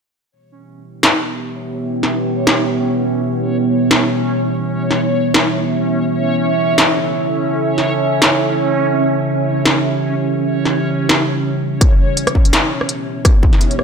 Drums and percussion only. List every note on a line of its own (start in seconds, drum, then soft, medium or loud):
1.03 snare loud
2.03 snare soft
2.47 snare loud
3.91 snare loud
4.91 snare soft
5.34 snare loud
6.78 snare loud
7.78 snare soft
8.22 snare loud
9.65 snare loud
10.65 snare soft
11.09 snare loud
11.81 kick loud
11.81 cross-stick soft
11.81 closed hi-hat medium
12.17 closed hi-hat medium
12.27 cross-stick medium
12.27 closed hi-hat soft
12.35 kick medium
12.45 closed hi-hat soft
12.53 snare loud
12.53 closed hi-hat medium
12.81 cross-stick medium
12.89 closed hi-hat medium
13.25 kick loud
13.25 cross-stick medium
13.25 closed hi-hat medium
13.43 kick loud
13.53 snare soft
13.61 closed hi-hat medium
13.71 closed hi-hat soft
13.79 cross-stick soft